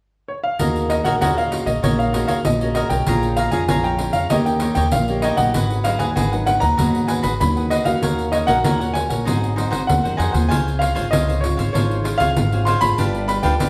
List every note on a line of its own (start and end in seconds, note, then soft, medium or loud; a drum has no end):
0.28 0.33 C#5 medium
0.44 0.87 F5 medium
0.59 0.99 D#2 medium
0.59 1.18 D#3 medium
0.59 1.01 G#3 medium
0.59 1.01 C#4 medium
0.59 0.88 F#4 medium
0.59 1.01 F#4 medium
0.59 0.89 A#4 medium
0.59 0.90 C#5 medium
0.59 0.90 D#5 medium
0.59 pandeiro medium
0.76 pandeiro soft
0.89 1.04 F#4 soft
0.89 1.05 A#4 soft
0.89 1.04 C#5 soft
0.89 1.06 D#5 medium
0.89 1.05 D#5 soft
0.89 pandeiro medium
1.04 1.18 A#1 medium
1.04 1.47 G#3 medium
1.04 1.47 C#4 medium
1.04 1.47 F#4 medium
1.04 1.15 F#4 medium
1.04 1.15 A#4 medium
1.04 1.15 C#5 medium
1.04 1.15 D#5 medium
1.04 1.19 F#5 medium
1.04 pandeiro medium
1.21 1.61 D#2 medium
1.21 1.80 A#2 soft
1.21 1.35 F#4 medium
1.21 1.36 A#4 medium
1.21 1.36 C#5 medium
1.21 1.35 D#5 medium
1.21 1.36 F#5 medium
1.21 pandeiro medium
1.37 1.66 A#4 soft
1.37 1.65 C#5 soft
1.37 1.64 D#5 soft
1.37 1.66 F5 medium
1.37 pandeiro soft
1.51 1.70 G#3 soft
1.51 1.70 C#4 medium
1.51 1.70 F#4 medium
1.51 pandeiro medium
1.66 1.80 A#1 medium
1.66 1.82 A#4 soft
1.66 1.81 C#5 soft
1.66 1.81 D#5 soft
1.66 1.83 D#5 medium
1.66 pandeiro soft
1.83 2.23 A#1 medium
1.83 2.42 D#3 medium
1.83 2.01 G#3 medium
1.83 2.01 C#4 medium
1.83 2.12 F#4 medium
1.83 2.02 F#4 medium
1.83 2.12 A#4 medium
1.83 1.89 C#5 medium
1.83 2.13 C#5 medium
1.83 2.13 D#5 medium
1.83 pandeiro medium
1.99 2.26 F5 medium
1.99 pandeiro soft
2.13 2.56 G#3 soft
2.13 2.56 C#4 medium
2.13 2.27 F#4 soft
2.13 2.56 F#4 medium
2.13 2.27 A#4 soft
2.13 2.27 C#5 medium
2.13 2.28 D#5 medium
2.13 pandeiro medium
2.27 2.42 D#2 medium
2.27 2.38 F#4 medium
2.27 2.38 A#4 medium
2.27 2.38 C#5 medium
2.27 2.38 D#5 medium
2.27 2.43 F5 medium
2.27 pandeiro medium
2.45 2.85 A#1 medium
2.45 3.04 A#2 soft
2.45 2.73 D#5 medium
2.45 pandeiro medium
2.61 3.03 G#3 medium
2.61 3.03 C#4 medium
2.61 3.03 F#4 medium
2.61 2.75 A#4 soft
2.61 2.75 C#5 soft
2.61 2.75 D#5 soft
2.61 pandeiro soft
2.75 2.90 F#4 medium
2.75 2.90 A#4 medium
2.75 2.90 C#5 medium
2.75 2.90 D#5 medium
2.75 2.89 D#5 medium
2.75 pandeiro medium
2.90 3.04 B1 medium
2.90 3.06 A#4 soft
2.90 3.06 C#5 soft
2.90 3.05 D#5 soft
2.90 3.38 G5 medium
2.90 pandeiro medium
3.07 3.47 A#1 medium
3.07 3.66 A#2 medium
3.07 3.37 G#3 soft
3.07 3.37 C#4 medium
3.07 3.37 F4 medium
3.07 3.36 G#4 medium
3.07 3.37 C#5 medium
3.07 3.37 F5 medium
3.07 3.38 A#5 medium
3.07 pandeiro medium
3.23 pandeiro soft
3.36 3.51 G#4 soft
3.36 3.52 C#5 soft
3.36 3.52 F5 medium
3.36 3.52 F5 soft
3.36 3.52 A#5 medium
3.36 pandeiro medium
3.51 3.66 F2 medium
3.51 3.94 G#3 medium
3.51 3.95 C#4 medium
3.51 3.95 F4 medium
3.51 3.62 G#4 medium
3.51 3.62 C#5 medium
3.51 3.62 F5 medium
3.51 3.67 G#5 medium
3.51 3.63 A#5 medium
3.51 pandeiro medium
3.68 4.09 A#1 medium
3.68 4.28 F2 medium
3.68 3.83 G#4 medium
3.68 3.84 C#5 medium
3.68 3.84 F5 medium
3.68 3.85 G#5 medium
3.68 3.84 A#5 medium
3.68 pandeiro medium
3.84 4.15 C#5 soft
3.84 4.14 F5 soft
3.84 4.16 G5 medium
3.84 4.13 A#5 soft
3.84 pandeiro soft
3.99 4.25 G#3 medium
3.99 4.26 C#4 medium
3.99 4.26 F4 medium
3.99 pandeiro medium
4.13 4.28 F2 medium
4.13 4.30 C#5 soft
4.13 4.28 F5 medium
4.13 4.30 F5 soft
4.13 4.29 A#5 soft
4.13 pandeiro medium
4.30 4.71 D#2 medium
4.30 4.89 D#3 medium
4.30 4.57 A#3 medium
4.30 4.57 C#4 soft
4.30 4.60 D#4 medium
4.30 4.60 G4 medium
4.30 4.57 G4 medium
4.30 4.61 C#5 medium
4.30 4.35 D#5 medium
4.30 4.61 D#5 medium
4.30 pandeiro medium
4.46 4.73 G5 medium
4.46 pandeiro soft
4.60 5.03 A#3 medium
4.60 5.03 C#4 medium
4.60 4.74 D#4 soft
4.60 4.75 G4 soft
4.60 5.03 G4 medium
4.60 4.76 C#5 medium
4.60 4.76 D#5 soft
4.60 pandeiro medium
4.75 4.90 D#2 medium
4.75 4.86 D#4 medium
4.75 4.86 G4 medium
4.75 4.86 C#5 medium
4.75 4.86 D#5 medium
4.75 4.92 G5 medium
4.75 pandeiro medium
4.92 5.33 A#1 medium
4.92 5.51 A#2 soft
4.92 5.24 F5 medium
4.92 pandeiro medium
5.08 5.34 A#3 medium
5.08 5.35 C#4 medium
5.08 5.35 G4 medium
5.08 5.22 G4 soft
5.08 5.23 C#5 soft
5.08 5.23 D#5 soft
5.08 pandeiro soft
5.22 5.38 D#4 medium
5.22 5.38 G4 medium
5.22 5.38 C#5 medium
5.22 5.39 D#5 medium
5.22 5.37 D#5 medium
5.22 pandeiro medium
5.37 5.52 A#1 medium
5.37 5.84 F#3 medium
5.37 5.84 B3 medium
5.37 5.85 D#4 medium
5.37 5.54 G4 soft
5.37 5.54 C#5 soft
5.37 5.53 D#5 soft
5.37 5.86 F#5 medium
5.37 pandeiro medium
5.54 5.95 G#1 medium
5.54 6.14 G#2 medium
5.54 5.83 F#4 medium
5.54 5.84 G#4 medium
5.54 5.85 B4 medium
5.54 5.85 F#5 medium
5.54 pandeiro medium
5.70 pandeiro soft
5.84 6.14 F#3 medium
5.84 6.15 B3 medium
5.84 6.15 D#4 medium
5.84 5.98 F#4 soft
5.84 5.98 G#4 soft
5.84 5.99 B4 soft
5.84 6.01 F5 medium
5.84 5.99 F#5 soft
5.84 pandeiro medium
5.99 6.14 D#2 medium
5.99 6.09 F#4 medium
5.99 6.09 G#4 medium
5.99 6.10 B4 medium
5.99 6.10 F#5 medium
5.99 6.15 G#5 medium
5.99 pandeiro soft
6.16 6.56 G#1 medium
6.16 6.76 D#3 medium
6.16 6.30 F#4 medium
6.16 6.31 G#4 medium
6.16 6.31 B4 medium
6.16 6.31 F#5 medium
6.16 6.45 G#5 medium
6.16 pandeiro medium
6.32 6.43 F#3 medium
6.32 6.43 B3 medium
6.32 6.43 D#4 medium
6.32 6.61 G#4 soft
6.32 6.61 B4 soft
6.32 6.59 F#5 soft
6.32 pandeiro soft
6.46 6.73 F#3 medium
6.46 6.74 B3 medium
6.46 6.74 D#4 medium
6.46 6.61 F#5 medium
6.46 pandeiro medium
6.60 6.76 D#2 medium
6.60 6.77 G#4 soft
6.60 6.77 B4 soft
6.60 6.76 F#5 soft
6.60 7.05 A#5 loud
6.60 pandeiro soft
6.77 7.18 D#2 medium
6.77 7.38 G#2 medium
6.77 7.36 F#3 medium
6.77 7.36 B3 medium
6.77 7.36 D#4 medium
6.77 7.07 F#4 medium
6.77 7.08 G#4 medium
6.77 7.08 B4 medium
6.77 7.09 F#5 medium
6.77 pandeiro medium
6.95 pandeiro soft
7.08 7.21 F#4 soft
7.08 7.22 G#4 medium
7.08 7.22 B4 medium
7.08 7.23 F#5 medium
7.08 7.13 G#5 medium
7.08 pandeiro medium
7.23 7.38 G#1 medium
7.23 7.33 F#4 medium
7.23 7.33 G#4 medium
7.23 7.33 B4 medium
7.23 7.34 F#5 medium
7.23 7.39 B5 medium
7.23 pandeiro medium
7.40 7.80 D#2 medium
7.40 8.00 D#3 medium
7.40 7.82 F#3 medium
7.40 7.83 B3 soft
7.40 7.83 D#4 medium
7.40 7.73 B5 medium
7.40 pandeiro medium
7.56 7.70 G#4 soft
7.56 7.70 B4 soft
7.56 7.70 F#5 soft
7.56 pandeiro soft
7.70 7.85 F#4 medium
7.70 7.86 G#4 medium
7.70 7.85 B4 medium
7.70 7.87 D#5 medium
7.70 7.84 F#5 medium
7.70 pandeiro medium
7.85 8.00 D#2 medium
7.85 8.28 A#3 medium
7.85 8.28 C#4 medium
7.85 8.28 F#4 medium
7.85 8.01 G#4 soft
7.85 8.01 B4 soft
7.85 8.34 F5 medium
7.85 8.00 F#5 soft
7.85 pandeiro medium
8.02 8.43 D#2 medium
8.02 8.62 D#3 medium
8.02 8.31 D#4 medium
8.02 8.32 A#4 medium
8.02 8.32 C#5 medium
8.02 8.33 F#5 medium
8.02 pandeiro medium
8.19 pandeiro soft
8.32 8.46 D#4 soft
8.32 8.46 A#4 soft
8.32 8.47 C#5 medium
8.32 8.49 D#5 medium
8.32 8.47 F#5 soft
8.32 pandeiro medium
8.47 8.62 A#1 medium
8.47 8.90 A#3 medium
8.47 8.91 C#4 medium
8.47 8.57 D#4 medium
8.47 8.91 F#4 medium
8.47 8.58 A#4 medium
8.47 8.58 C#5 medium
8.47 8.96 F#5 medium
8.47 8.58 F#5 medium
8.47 pandeiro soft
8.64 9.04 D#2 medium
8.64 9.24 A#2 medium
8.64 8.79 D#4 medium
8.64 8.79 A#4 medium
8.64 8.79 C#5 medium
8.64 8.79 F#5 medium
8.64 pandeiro medium
8.80 9.10 A#4 soft
8.80 9.09 C#5 soft
8.80 9.08 F#5 soft
8.80 pandeiro soft
8.94 9.14 A#3 medium
8.94 9.14 C#4 medium
8.94 9.14 F#4 medium
8.94 9.91 G#5 medium
8.94 pandeiro medium
9.09 9.24 A#1 medium
9.09 9.25 A#4 soft
9.09 9.25 C#5 soft
9.09 9.24 F#5 soft
9.09 pandeiro medium
9.25 9.67 G#1 medium
9.25 9.86 G#2 medium
9.25 9.53 F#3 medium
9.25 9.53 C4 medium
9.25 9.55 D#4 medium
9.25 9.53 D#4 medium
9.25 9.55 G#4 medium
9.25 9.56 C5 medium
9.25 9.56 F#5 medium
9.25 pandeiro medium
9.44 pandeiro soft
9.56 9.99 F#3 soft
9.56 10.00 C4 medium
9.56 9.69 D#4 medium
9.56 10.00 D#4 medium
9.56 9.70 G#4 soft
9.56 9.70 C5 soft
9.56 9.70 F#5 medium
9.56 pandeiro medium
9.71 9.86 G#1 medium
9.71 9.81 D#4 medium
9.71 9.81 G#4 medium
9.71 9.81 C5 medium
9.71 9.81 F#5 medium
9.71 pandeiro medium
9.87 10.02 D#2 medium
9.87 10.48 D#3 soft
9.87 10.20 F#5 medium
9.87 pandeiro medium
10.03 10.18 F#2 medium
10.03 10.31 F#3 medium
10.03 10.31 C4 medium
10.03 10.31 D#4 medium
10.03 10.17 G#4 soft
10.03 10.17 C5 soft
10.03 10.18 F#5 soft
10.03 pandeiro soft
10.17 10.33 F2 medium
10.17 10.33 D#4 medium
10.17 10.33 G#4 medium
10.17 10.32 C5 medium
10.17 10.31 F#5 medium
10.17 10.47 G#5 medium
10.17 pandeiro medium
10.32 10.49 D#2 medium
10.32 10.92 C4 medium
10.32 10.92 F4 medium
10.32 10.49 G#4 soft
10.32 10.92 G#4 medium
10.32 10.49 C5 soft
10.32 10.48 F#5 soft
10.32 pandeiro medium
10.49 10.91 C#2 medium
10.49 11.10 C#3 medium
10.49 10.79 F4 medium
10.49 10.79 C5 medium
10.49 10.80 C#5 medium
10.49 10.80 F5 medium
10.49 10.78 G#5 medium
10.49 pandeiro medium
10.68 pandeiro soft
10.79 10.93 F4 soft
10.79 10.94 C5 medium
10.79 10.94 C#5 soft
10.79 11.09 F5 medium
10.79 10.95 F5 medium
10.79 pandeiro medium
10.95 11.10 G#1 medium
10.95 11.38 C4 medium
10.95 11.05 F4 medium
10.95 11.38 F4 medium
10.95 11.39 G#4 medium
10.95 11.05 C5 medium
10.95 11.05 C#5 medium
10.95 11.06 F5 medium
10.95 pandeiro soft
11.11 11.52 C#2 medium
11.11 11.72 G#2 medium
11.11 11.26 F4 medium
11.11 11.27 C5 medium
11.11 11.27 C#5 medium
11.11 11.44 D#5 medium
11.11 11.26 F5 medium
11.11 pandeiro medium
11.28 11.57 C5 soft
11.28 11.57 C#5 soft
11.28 11.56 F5 soft
11.28 pandeiro soft
11.41 11.70 C4 medium
11.41 11.70 F4 medium
11.41 11.70 G#4 medium
11.41 11.71 C#5 medium
11.41 pandeiro medium
11.57 11.72 G#1 medium
11.57 11.73 C5 soft
11.57 11.73 C#5 soft
11.57 11.72 F5 soft
11.57 pandeiro medium
11.73 12.14 G#1 medium
11.73 12.34 C#3 soft
11.73 12.04 C4 soft
11.73 12.03 F4 medium
11.73 12.04 F4 medium
11.73 12.05 G#4 medium
11.73 12.04 C5 medium
11.73 12.22 C#5 medium
11.73 12.04 C#5 medium
11.73 12.05 F5 medium
11.73 pandeiro medium
11.91 pandeiro soft
12.04 12.18 F4 soft
12.04 12.18 C5 medium
12.04 12.19 C#5 medium
12.04 12.19 F5 medium
12.04 pandeiro medium
12.18 12.34 C#2 medium
12.18 12.47 C4 medium
12.18 12.29 F4 medium
12.18 12.47 F4 medium
12.18 12.47 G#4 medium
12.18 12.29 C5 medium
12.18 12.30 C#5 medium
12.18 12.67 F5 loud
12.18 12.30 F5 medium
12.18 pandeiro medium
12.37 12.76 G#1 medium
12.37 12.96 G#2 soft
12.37 pandeiro medium
12.52 12.79 C4 medium
12.52 12.79 F4 medium
12.52 12.79 G#4 medium
12.52 12.66 C5 soft
12.52 12.66 C#5 soft
12.52 12.66 F5 soft
12.52 pandeiro soft
12.65 12.81 F4 medium
12.65 12.82 C5 medium
12.65 12.81 C#5 medium
12.65 12.80 F5 medium
12.65 12.81 C6 medium
12.65 pandeiro medium
12.81 12.96 G#1 medium
12.81 13.40 B3 medium
12.81 13.40 F4 medium
12.81 13.40 A4 medium
12.81 12.97 C5 soft
12.81 12.97 C#5 soft
12.81 12.96 F5 soft
12.81 13.25 B5 loud
12.81 pandeiro medium
12.98 13.38 G1 medium
12.98 13.58 G3 medium
12.98 13.27 D4 medium
12.98 13.27 G4 medium
12.98 13.28 B4 medium
12.98 13.29 F5 medium
12.98 pandeiro medium
13.15 pandeiro soft
13.28 13.42 D4 soft
13.28 13.42 G4 soft
13.28 13.43 B4 soft
13.28 13.43 F5 medium
13.28 13.45 B5 medium
13.28 pandeiro medium
13.43 13.58 D2 medium
13.43 13.69 B3 medium
13.43 13.53 D4 medium
13.43 13.69 F4 medium
13.43 13.53 G4 medium
13.43 13.69 A4 medium
13.43 13.54 B4 medium
13.43 13.54 F5 medium
13.43 13.69 G5 medium
13.43 pandeiro soft
13.60 13.69 G1 medium
13.60 13.69 D3 medium
13.60 13.69 D4 medium
13.60 13.69 G4 medium
13.60 13.69 B4 medium
13.60 13.69 F5 medium
13.60 pandeiro medium